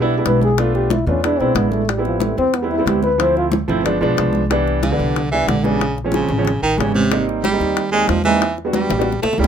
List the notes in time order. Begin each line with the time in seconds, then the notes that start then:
Already playing: B1
0.00 G3 B3 D4 E4
0.10 high conga
0.17 G3 B3 D4 E4
0.25 B1 B4, high bongo, low bongo, high conga
0.42 G#4, high bongo, high conga
0.58 A3 B3 D4 F4 A4, high bongo
0.75 G4, high bongo, high conga
0.90 E4, high bongo, high conga
1.06 E2 A3 B3 C#4 D4 F4, high conga, low conga
1.23 G#3 B3 D4 E4, high bongo
1.40 B1 G#3 B3 C4 D4 E4, high bongo, high conga
1.55 A1 B3, high bongo, low bongo, high conga
1.72 A3, high bongo, high conga
1.88 G3, high bongo, high conga
1.97 G3 B3 C4 E4
2.05 F3, high bongo, high conga
2.20 A3, high bongo, high conga
2.37 E2 C4, high bongo, high conga
2.54 B3, high bongo, high conga
2.62 G3 B3 C4 E4
2.70 E4, high conga
2.78 G3 B3 C4 E4
2.86 D2 G4, high bongo, low bongo, high conga
3.03 B4, high bongo, high conga
3.18 F3 A3 C4 E4 C5, high bongo, high conga
3.36 F4, high bongo, high conga
3.52 high bongo, high conga
3.68 G1 F3 A3 C4 E4, high conga, low conga
3.83 F3 G#3 B3 D4, high bongo, high conga, low conga
4.01 B1 F3 G#3 B3 D4, high bongo, high conga
4.17 C2, high bongo, low bongo, high conga
4.33 high bongo, high conga
4.50 E3 G3 B3 D4, high bongo, high conga
4.67 high bongo, high conga
4.82 D3, high bongo, high conga
4.91 E3 G3 B3 D4
4.99 C2, high bongo, high conga
5.15 high bongo, high conga
5.31 E3 G3 B3 D4, high conga
5.47 A#1 D3, high bongo, low bongo, high conga
5.63 C#3 E3 G3 B3 D4, high bongo, high conga
5.80 high bongo, high conga
5.97 high bongo, high conga
6.04 F3 G#3 C4 C#4
6.12 C#3, high bongo, high conga
6.29 A1, high conga, low conga
6.38 F3 G#3 C4 C#4
6.45 high bongo, high conga, low conga
6.61 A1 D#3, high bongo, high conga
6.78 G#1 C#3 E3 G3 B3 C#4, high bongo, low bongo, high conga
6.94 C3, high bongo, high conga
7.11 G3 A#3 C4 D#4, high bongo
7.28 high bongo, high conga
7.44 G3, high bongo, high conga
7.52 G3 A#3 C4 D#4
7.60 D#2, high bongo, high conga
7.76 high bongo, high conga
7.92 G3 G#3 A#3 C4 D#4, high conga
8.08 E2 F3, high bongo, low bongo, high conga
8.24 E3 G3 A#3 C4 D#4, high bongo, high conga
8.40 high bongo, high conga
8.57 high bongo, high conga
8.65 G3 B3 D4 F#4
8.73 G3, high bongo, high conga
8.90 A1, high bongo, high conga, low conga
8.98 G3 B3 D4 F#4, high bongo
9.05 high conga
9.12 low bongo
9.22 C#2 A3, high bongo, high conga
9.33 low bongo
9.38 D2 G3 A#3 C#4 E4, high conga
9.44 low bongo